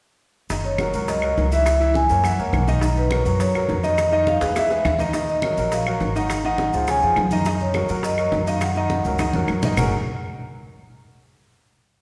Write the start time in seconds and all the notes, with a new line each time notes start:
0.49 F#1 D#3 D#4 D#5, high bongo, high conga, maracas
0.64 C#5, high bongo, high conga, maracas
0.78 F#3 F#4 A#4, high bongo, high conga, claves, maracas
0.93 C#2 F#3 F#4 A#4, high conga, maracas
1.08 D#5, high bongo, high conga, maracas
1.22 F#3 F#4 A#4, high bongo, high conga, claves, maracas
1.37 C#2, high bongo, low bongo, high conga, maracas
1.51 E3 E4 E5, high bongo, high conga, maracas
1.66 high bongo, high conga, claves, maracas
1.80 E3 E4 E5, high bongo, high conga, maracas
1.94 G#5, high bongo, high conga, maracas
2.09 F#2 A#3 A#4 C#5, high conga, maracas
2.24 E3 E4 E5 F#5, high bongo, high conga, claves, maracas
2.38 C#2 A#3 A#4 C#5, high bongo, high conga, maracas
2.53 B1, high bongo, low bongo, high conga, claves, maracas
2.67 D#3 D#4 D#5, high bongo, high conga, maracas
2.81 D#3 D#4, high bongo, high conga, maracas
2.96 B4, high bongo, high conga, maracas
3.11 F#3 F#4 A#4, high bongo, high conga, claves, maracas
3.25 F#2 F#3 F#4 A#4, high conga, maracas
3.39 C#5, high bongo, high conga, maracas
3.54 F#3 F#4 A#4, high bongo, high conga, claves, maracas
3.69 F2, high bongo, low bongo, high conga, maracas
3.83 D#3 D#4 D#5, high bongo, high conga, maracas
3.98 high bongo, high conga, claves, maracas
4.12 D#3 D#4 D#5, high bongo, high conga, maracas
4.27 F5, high bongo, high conga, maracas
4.41 E2 G#3 G#4 B4, high bongo, high conga, maracas
4.55 E3 E4 E5, high bongo, high conga, claves, maracas
4.70 G#3 G#4 B4, high bongo, high conga, maracas
4.85 D#2, low bongo, high conga, claves, maracas
4.99 D#3 D#4 D#5, low bongo, high conga, maracas
5.13 D#3 D#4 D#5, high bongo, high conga, maracas
5.28 D#5, high bongo, high conga, maracas
5.42 F#3 F#4 A#4, high bongo, high conga, claves, maracas
5.57 A#1 F#3 F#4 A#4, high conga, maracas
5.72 F5, high bongo, high conga, maracas
5.86 F#3 F#4 A#4, high bongo, high conga, claves, maracas
6.00 G#1, high bongo, low bongo, high conga, maracas
6.15 D#3 D#4 D#5 F#5, high bongo, high conga, maracas
6.29 high bongo, high conga, claves, maracas
6.44 D#3 D#4 D#5 F#5, high bongo, high conga, maracas
6.58 high bongo, high conga, maracas
6.73 C#2 F3 F4 G#4, high conga, maracas
6.87 C#3 C#4 C#5 G#5, high bongo, high conga, claves, maracas
7.02 F2 F3 F4 G#4, high bongo, high conga, maracas
7.16 F#2, high bongo, low bongo, high conga, claves, maracas
7.31 D#3 D#4 D#5 A#5, high bongo, high conga, maracas
7.45 D#3 D#4 D#5, high bongo, high conga, maracas
7.60 C#5, high bongo, high conga, maracas
7.74 F#3 F#4 A#4, high bongo, high conga, claves, maracas
7.89 F#2 F#3 F#4 A#4, high conga, maracas
8.03 D#5, high bongo, high conga, maracas
8.18 F#3 F#4 A#4, high bongo, high conga, claves, maracas
8.32 F#2, high bongo, low bongo, high conga, maracas
8.46 D#3 D#4 D#5 F5, high bongo, high conga, maracas
8.61 F#5, high bongo, high conga, claves, maracas
8.75 D#3 D#4 D#5, high bongo, high conga, maracas
8.90 high bongo, high conga, maracas
9.04 C#2 F#3 F#4 A#4, high conga, maracas
9.19 D#3 D#4 D#5, high bongo, high conga, claves, maracas
9.33 F2 F#3 F#4 A#4, high bongo, high conga, maracas
9.48 F#2, high bongo, low bongo, claves, maracas
9.62 D#3 D#4 D#5, high bongo, low conga, maracas
9.77 F#1 F#3 C#4 D#4 F#4 G#4 A#4 F#5, low bongo, low conga, claves, maracas